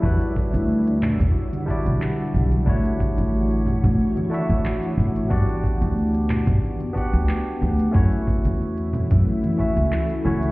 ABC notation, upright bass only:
X:1
M:4/4
L:1/16
Q:"Swing 16ths" 1/4=91
K:Edor
V:1 name="Upright bass" clef=bass
E,, z2 D,,3 z E,, z3 B,,, z2 B,,, z | D,, z2 A,,,3 z D,, z3 A,,, z2 A,,, z | G,, z2 D,,3 z G,, z3 D,, z2 D,, z | F,, z2 E,,3 z F,, z3 C,, z2 C,, z |]